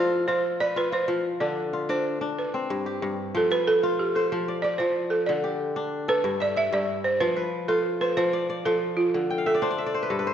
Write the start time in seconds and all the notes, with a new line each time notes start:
Already playing: F3 F4 G4 A4 C5
0.28 F4 C5
0.60 B4 D5
0.76 F4 B4
0.92 F4 C5
1.08 F3
1.40 D3 D4 D5
1.73 F4
1.89 D4 C5
2.21 D4
2.39 B4
2.54 C4
2.70 G2
2.86 G4
3.02 G2
3.35 F3 A4
3.51 B4
3.68 A4
3.83 F4
3.99 G4
4.15 A4 C5
4.32 F3
4.48 D5
4.62 D5
4.78 F3 C5
5.10 A4
5.26 D3 D5
5.44 G4
5.76 D4
6.08 A4 B4
6.24 G2
6.40 D5 E5
6.56 E5
6.72 G2 D5
7.04 C5
7.20 F3 B4
7.36 B4
7.68 F4 A4
8.01 B4 C5
8.17 F3 C5
8.33 D5
8.50 D5
8.65 F3 A4
8.97 F4
9.14 D3
9.30 G5
9.38 F5
9.46 A4 E5
9.55 D5
9.62 D4 C5
9.71 D5
9.78 E5
9.86 D5
9.94 C5
10.03 B4
10.10 G2 A4
10.19 B4
10.27 C5